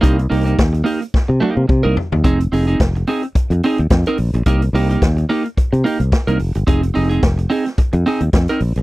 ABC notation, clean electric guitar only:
X:1
M:4/4
L:1/16
Q:"Swing 16ths" 1/4=108
K:Fm
V:1 name="Clean electric guitar"
[B,EG] z [B,EG] [B,EG] z2 [B,EG] z3 [B,EG] z2 [B,EB] z2 | [CEA] z [CEA] [CEA] z2 [CEA] z3 [CEA] z2 [CEB] z2 | [B,EG] z [B,EG] [B,EG] z2 [B,EG] z3 [B,EG] z2 [B,EB] z2 | [CEA] z [CEA] [CEA] z2 [CEA] z3 [CEA] z2 [CEB] z2 |]